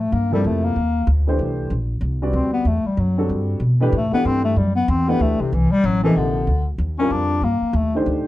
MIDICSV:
0, 0, Header, 1, 5, 480
1, 0, Start_track
1, 0, Tempo, 317628
1, 674, Time_signature, 3, 2, 24, 8
1, 12501, End_track
2, 0, Start_track
2, 0, Title_t, "Grand piano"
2, 0, Program_c, 0, 0
2, 478, Note_on_c, 0, 48, 65
2, 482, Note_on_c, 0, 53, 64
2, 494, Note_on_c, 0, 58, 68
2, 496, Note_on_c, 0, 64, 61
2, 505, Note_on_c, 0, 69, 79
2, 1111, Note_off_c, 0, 48, 0
2, 1113, Note_off_c, 0, 53, 0
2, 1120, Note_off_c, 0, 58, 0
2, 1120, Note_off_c, 0, 64, 0
2, 1125, Note_off_c, 0, 69, 0
2, 1917, Note_on_c, 0, 52, 64
2, 1927, Note_on_c, 0, 57, 58
2, 1931, Note_on_c, 0, 62, 58
2, 1942, Note_on_c, 0, 67, 55
2, 1947, Note_on_c, 0, 72, 76
2, 2551, Note_off_c, 0, 52, 0
2, 2556, Note_off_c, 0, 57, 0
2, 2558, Note_off_c, 0, 62, 0
2, 2564, Note_off_c, 0, 67, 0
2, 2566, Note_off_c, 0, 72, 0
2, 3354, Note_on_c, 0, 55, 64
2, 3358, Note_on_c, 0, 60, 55
2, 3361, Note_on_c, 0, 66, 54
2, 3372, Note_on_c, 0, 71, 57
2, 3377, Note_on_c, 0, 74, 68
2, 3989, Note_off_c, 0, 55, 0
2, 3991, Note_off_c, 0, 60, 0
2, 3993, Note_off_c, 0, 66, 0
2, 3998, Note_off_c, 0, 71, 0
2, 4001, Note_off_c, 0, 74, 0
2, 4791, Note_on_c, 0, 50, 58
2, 4798, Note_on_c, 0, 55, 55
2, 4804, Note_on_c, 0, 60, 56
2, 4810, Note_on_c, 0, 66, 52
2, 4820, Note_on_c, 0, 69, 70
2, 5427, Note_off_c, 0, 50, 0
2, 5431, Note_off_c, 0, 55, 0
2, 5434, Note_off_c, 0, 60, 0
2, 5437, Note_off_c, 0, 66, 0
2, 5442, Note_off_c, 0, 69, 0
2, 5748, Note_on_c, 0, 52, 78
2, 5759, Note_on_c, 0, 57, 70
2, 5761, Note_on_c, 0, 62, 66
2, 5775, Note_on_c, 0, 67, 74
2, 5778, Note_on_c, 0, 71, 85
2, 5924, Note_off_c, 0, 52, 0
2, 5930, Note_off_c, 0, 57, 0
2, 5931, Note_off_c, 0, 62, 0
2, 5938, Note_off_c, 0, 67, 0
2, 5939, Note_off_c, 0, 71, 0
2, 6227, Note_on_c, 0, 52, 59
2, 6236, Note_on_c, 0, 57, 61
2, 6244, Note_on_c, 0, 62, 54
2, 6245, Note_on_c, 0, 67, 60
2, 6258, Note_on_c, 0, 71, 74
2, 6865, Note_off_c, 0, 52, 0
2, 6869, Note_off_c, 0, 57, 0
2, 6873, Note_off_c, 0, 62, 0
2, 6874, Note_off_c, 0, 67, 0
2, 6881, Note_off_c, 0, 71, 0
2, 7671, Note_on_c, 0, 52, 66
2, 7677, Note_on_c, 0, 57, 60
2, 7685, Note_on_c, 0, 62, 59
2, 7692, Note_on_c, 0, 67, 64
2, 7695, Note_on_c, 0, 71, 68
2, 8307, Note_off_c, 0, 52, 0
2, 8310, Note_off_c, 0, 57, 0
2, 8314, Note_off_c, 0, 62, 0
2, 8318, Note_off_c, 0, 67, 0
2, 8319, Note_off_c, 0, 71, 0
2, 9117, Note_on_c, 0, 48, 80
2, 9118, Note_on_c, 0, 53, 71
2, 9132, Note_on_c, 0, 58, 68
2, 9138, Note_on_c, 0, 63, 71
2, 9140, Note_on_c, 0, 69, 86
2, 9750, Note_off_c, 0, 48, 0
2, 9751, Note_off_c, 0, 53, 0
2, 9758, Note_off_c, 0, 58, 0
2, 9761, Note_off_c, 0, 63, 0
2, 9762, Note_off_c, 0, 69, 0
2, 10556, Note_on_c, 0, 50, 65
2, 10563, Note_on_c, 0, 55, 62
2, 10573, Note_on_c, 0, 60, 59
2, 10583, Note_on_c, 0, 65, 63
2, 10588, Note_on_c, 0, 70, 83
2, 11190, Note_off_c, 0, 50, 0
2, 11194, Note_off_c, 0, 55, 0
2, 11199, Note_off_c, 0, 60, 0
2, 11204, Note_off_c, 0, 65, 0
2, 11206, Note_off_c, 0, 70, 0
2, 12010, Note_on_c, 0, 51, 72
2, 12017, Note_on_c, 0, 57, 61
2, 12023, Note_on_c, 0, 62, 65
2, 12032, Note_on_c, 0, 67, 61
2, 12039, Note_on_c, 0, 72, 78
2, 12501, Note_off_c, 0, 51, 0
2, 12501, Note_off_c, 0, 57, 0
2, 12501, Note_off_c, 0, 62, 0
2, 12501, Note_off_c, 0, 67, 0
2, 12501, Note_off_c, 0, 72, 0
2, 12501, End_track
3, 0, Start_track
3, 0, Title_t, "Bass clarinet"
3, 0, Program_c, 1, 71
3, 0, Note_on_c, 1, 57, 83
3, 194, Note_on_c, 1, 58, 81
3, 217, Note_off_c, 1, 57, 0
3, 490, Note_off_c, 1, 58, 0
3, 500, Note_on_c, 1, 55, 89
3, 703, Note_on_c, 1, 57, 78
3, 726, Note_off_c, 1, 55, 0
3, 969, Note_on_c, 1, 58, 92
3, 991, Note_off_c, 1, 57, 0
3, 1634, Note_off_c, 1, 58, 0
3, 3554, Note_on_c, 1, 60, 80
3, 3818, Note_off_c, 1, 60, 0
3, 3827, Note_on_c, 1, 59, 87
3, 4035, Note_on_c, 1, 57, 80
3, 4058, Note_off_c, 1, 59, 0
3, 4327, Note_on_c, 1, 55, 80
3, 4350, Note_off_c, 1, 57, 0
3, 4528, Note_on_c, 1, 54, 69
3, 4550, Note_off_c, 1, 55, 0
3, 5000, Note_off_c, 1, 54, 0
3, 5981, Note_on_c, 1, 57, 86
3, 6237, Note_off_c, 1, 57, 0
3, 6246, Note_on_c, 1, 59, 110
3, 6440, Note_on_c, 1, 60, 116
3, 6463, Note_off_c, 1, 59, 0
3, 6707, Note_off_c, 1, 60, 0
3, 6716, Note_on_c, 1, 57, 97
3, 6912, Note_on_c, 1, 55, 88
3, 6935, Note_off_c, 1, 57, 0
3, 7177, Note_off_c, 1, 55, 0
3, 7186, Note_on_c, 1, 59, 99
3, 7408, Note_on_c, 1, 60, 97
3, 7430, Note_off_c, 1, 59, 0
3, 7691, Note_on_c, 1, 59, 105
3, 7713, Note_off_c, 1, 60, 0
3, 7885, Note_on_c, 1, 57, 92
3, 7908, Note_off_c, 1, 59, 0
3, 8171, Note_on_c, 1, 48, 77
3, 8193, Note_off_c, 1, 57, 0
3, 8366, Note_on_c, 1, 52, 97
3, 8389, Note_off_c, 1, 48, 0
3, 8639, Note_on_c, 1, 55, 111
3, 8662, Note_off_c, 1, 52, 0
3, 8850, Note_on_c, 1, 54, 99
3, 8873, Note_off_c, 1, 55, 0
3, 9110, Note_off_c, 1, 54, 0
3, 9119, Note_on_c, 1, 52, 103
3, 9324, Note_on_c, 1, 50, 83
3, 9346, Note_off_c, 1, 52, 0
3, 10094, Note_off_c, 1, 50, 0
3, 10559, Note_on_c, 1, 61, 99
3, 10759, Note_on_c, 1, 62, 107
3, 10782, Note_off_c, 1, 61, 0
3, 11241, Note_on_c, 1, 58, 88
3, 11264, Note_off_c, 1, 62, 0
3, 11729, Note_on_c, 1, 57, 82
3, 11752, Note_off_c, 1, 58, 0
3, 12017, Note_off_c, 1, 57, 0
3, 12501, End_track
4, 0, Start_track
4, 0, Title_t, "Upright bass"
4, 0, Program_c, 2, 32
4, 0, Note_on_c, 2, 45, 75
4, 174, Note_off_c, 2, 45, 0
4, 186, Note_on_c, 2, 43, 88
4, 655, Note_off_c, 2, 43, 0
4, 666, Note_on_c, 2, 41, 82
4, 1136, Note_off_c, 2, 41, 0
4, 1146, Note_on_c, 2, 39, 75
4, 1607, Note_off_c, 2, 39, 0
4, 1616, Note_on_c, 2, 38, 92
4, 2091, Note_off_c, 2, 38, 0
4, 2098, Note_on_c, 2, 36, 83
4, 2562, Note_off_c, 2, 36, 0
4, 2571, Note_on_c, 2, 34, 84
4, 3025, Note_off_c, 2, 34, 0
4, 3034, Note_on_c, 2, 36, 87
4, 3514, Note_off_c, 2, 36, 0
4, 3523, Note_on_c, 2, 38, 77
4, 3995, Note_off_c, 2, 38, 0
4, 4004, Note_on_c, 2, 40, 83
4, 4292, Note_off_c, 2, 40, 0
4, 4492, Note_on_c, 2, 42, 88
4, 4968, Note_off_c, 2, 42, 0
4, 4975, Note_on_c, 2, 43, 77
4, 5427, Note_off_c, 2, 43, 0
4, 5436, Note_on_c, 2, 47, 84
4, 5919, Note_off_c, 2, 47, 0
4, 5930, Note_on_c, 2, 45, 95
4, 6215, Note_off_c, 2, 45, 0
4, 6422, Note_on_c, 2, 43, 83
4, 6885, Note_off_c, 2, 43, 0
4, 6894, Note_on_c, 2, 42, 83
4, 7368, Note_off_c, 2, 42, 0
4, 7376, Note_on_c, 2, 40, 102
4, 7843, Note_off_c, 2, 40, 0
4, 7852, Note_on_c, 2, 38, 86
4, 8136, Note_off_c, 2, 38, 0
4, 8349, Note_on_c, 2, 36, 85
4, 8625, Note_off_c, 2, 36, 0
4, 8821, Note_on_c, 2, 33, 98
4, 9293, Note_off_c, 2, 33, 0
4, 9308, Note_on_c, 2, 34, 72
4, 9768, Note_off_c, 2, 34, 0
4, 9777, Note_on_c, 2, 38, 82
4, 10242, Note_off_c, 2, 38, 0
4, 10251, Note_on_c, 2, 39, 86
4, 10728, Note_off_c, 2, 39, 0
4, 10734, Note_on_c, 2, 41, 77
4, 11196, Note_off_c, 2, 41, 0
4, 11206, Note_on_c, 2, 43, 81
4, 11494, Note_off_c, 2, 43, 0
4, 11685, Note_on_c, 2, 39, 91
4, 12165, Note_off_c, 2, 39, 0
4, 12182, Note_on_c, 2, 38, 83
4, 12462, Note_off_c, 2, 38, 0
4, 12501, End_track
5, 0, Start_track
5, 0, Title_t, "Muted upright bass strokes"
5, 4306, Note_on_c, 9, 29, 39
5, 4457, Note_off_c, 9, 29, 0
5, 6224, Note_on_c, 9, 29, 44
5, 6375, Note_off_c, 9, 29, 0
5, 8161, Note_on_c, 9, 29, 41
5, 8312, Note_off_c, 9, 29, 0
5, 8644, Note_on_c, 9, 29, 43
5, 8795, Note_off_c, 9, 29, 0
5, 11506, Note_on_c, 9, 29, 40
5, 11657, Note_off_c, 9, 29, 0
5, 12501, End_track
0, 0, End_of_file